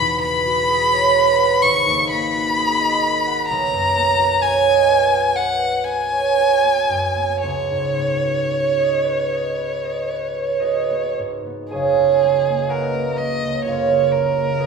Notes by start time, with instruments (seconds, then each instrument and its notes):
Already playing: harp E1 E2 B3 F#4 G#4 B4 F#5, violin B5
0.00 harp B2
0.21 harp B3, violin B5
0.46 harp F#4
0.69 harp G#4
0.92 harp C#5
1.14 harp B4
1.38 harp F#5
1.62 harp G#1, violin C#6
1.86 harp D#2
2.10 harp A#3, violin B5
2.35 harp F#4
2.58 harp G#4
2.79 harp D#5
3.03 harp A#4
3.27 harp F#5
3.48 harp B1, violin A#5
3.73 harp F#2
3.97 harp B3
4.19 harp F#4
4.41 harp C#5, violin G#5
4.67 harp D#5
4.90 harp B4
5.13 harp F#5
5.35 harp B4, violin F#5
5.62 harp F#5
5.84 harp B4, violin G#5
6.12 harp C#5
6.38 harp F#4
6.64 harp B3
6.89 harp F#2
7.16 harp B3
7.41 harp C#2, violin C#5
7.70 harp G#2
7.98 harp B3
8.25 harp F#4
8.51 harp C#5
8.78 harp D#5
9.04 harp B4
9.31 harp D#5
9.57 harp B4
9.83 harp D#5
10.10 harp B4
10.35 harp C#5
10.60 harp F#4 G#4 B4 D#5
10.90 harp B3
11.19 harp G#2
11.46 harp B3
11.71 harp F#1 G#4 C#5 F5 G#5, violin G#4
11.99 harp C#2
12.24 harp G#3
12.48 harp A#3
12.68 harp C#4 F#4 B4 F#5, violin A#4
12.72 harp D#5
12.95 harp A#3
13.17 harp G#3, violin D#5
13.44 harp C#2
13.65 harp F#1 F4 A#4 F5, violin C#5
13.70 harp C#5
13.92 harp G#3
14.12 harp C#2, violin A#4
14.38 harp A#3
14.58 harp C#4 G#4 B4 D#5